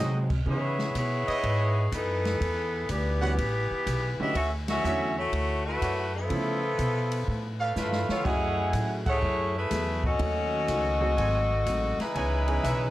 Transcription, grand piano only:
0.00 0.27 F#3 medium
0.00 0.27 G#3 medium
0.00 0.28 C4 medium
0.00 0.27 D#4 medium
0.00 0.28 F#4 medium
0.46 0.75 E3 medium
0.46 0.75 B3 soft
0.46 0.76 C#4 soft
0.46 0.76 D#4 medium
0.46 0.76 G#4 medium
3.21 3.36 E3 medium
3.21 3.36 G3 medium
3.21 3.36 B3 medium
3.21 3.36 C#4 medium
3.21 3.36 F#4 medium
4.20 4.34 D3 medium
4.20 4.34 F#3 medium
4.20 4.34 A3 medium
4.20 4.34 C#4 medium
4.20 4.34 F#4 medium
4.84 5.13 D3 medium
4.84 5.14 F#3 medium
4.84 5.14 A3 medium
4.84 5.14 C#4 medium
4.84 5.14 E4 medium
6.29 6.59 F3 medium
6.29 6.59 A3 soft
6.29 6.59 B3 medium
6.29 6.59 C#4 medium
6.29 6.60 E4 medium
8.24 9.00 F#3 medium
8.24 9.00 A3 soft
8.24 9.00 C#4 medium
8.24 9.00 E4 medium
8.24 9.00 F#4 medium
10.19 10.95 F#3 medium
10.19 10.95 A3 soft
10.19 10.95 C#4 medium
10.19 10.95 D#4 medium
10.19 10.95 A4 medium
11.00 11.16 F#3 medium
11.00 11.16 A3 medium
11.00 11.16 C4 medium
11.00 11.16 D#4 medium
11.00 11.16 G#4 medium
12.48 12.63 E3 medium
12.48 12.63 B3 medium
12.48 12.63 C#4 medium
12.48 12.63 D#4 medium
12.48 12.63 G#4 medium

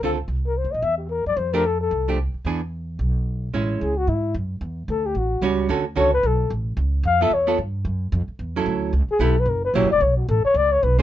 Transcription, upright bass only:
0.01 0.26 C#2 medium
0.28 0.62 C2 medium
0.64 0.73 D2 medium
0.74 0.82 A#1 medium
0.82 1.23 E2 medium
1.26 1.36 F#2 medium
1.37 1.88 F2 medium
1.91 2.31 C2 medium
2.34 muted upright bass stroke soft
2.45 2.96 E2 medium
2.99 3.50 B1 medium
3.54 3.80 A1 medium
3.81 4.07 C#2 medium
4.07 4.33 G#2 medium
4.34 4.60 F#2 medium
4.61 4.87 E2 medium
4.88 5.14 D2 medium
5.15 5.41 A1 medium
5.41 5.68 C#2 medium
5.69 5.95 D2 medium
5.96 6.23 C#2 medium
6.23 6.49 B1 medium
6.50 6.76 A1 medium
6.77 7.03 C#2 medium
7.03 7.30 F2 medium
7.30 7.57 E2 medium
7.58 7.84 G2 medium
7.85 8.11 F#2 medium
8.12 8.27 F2 medium
8.28 muted upright bass stroke soft
8.39 8.65 E2 medium
8.66 8.92 D2 medium
8.93 9.08 C#2 medium
9.09 muted upright bass stroke soft
9.19 9.45 B1 medium
9.46 9.73 F#1 medium
9.74 9.82 A#1 medium
9.82 9.91 F#1 medium
9.92 10.00 E1 medium
10.01 10.27 B1 medium
10.29 10.43 A1 medium
10.45 muted upright bass stroke soft
10.54 10.81 C#2 medium
10.83 11.02 B1 medium

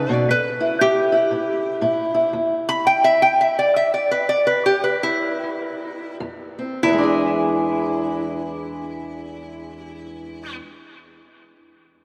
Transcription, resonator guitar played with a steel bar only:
0.00 0.12 B4 medium
0.12 0.28 D5 medium
0.31 0.79 B4 medium
0.81 2.31 G4 medium
2.69 2.85 B5 medium
2.87 3.03 G5 medium
3.04 3.20 E5 medium
3.22 3.38 G5 medium
3.41 3.56 E5 medium
3.59 3.74 D5 medium
3.76 3.92 E5 medium
3.94 4.10 D5 medium
4.11 4.28 B4 medium
4.29 4.46 D5 medium
4.47 4.64 B4 medium
4.66 4.83 G4 medium
4.84 5.01 B4 medium
5.03 6.17 E4 medium
6.83 10.55 E4 medium

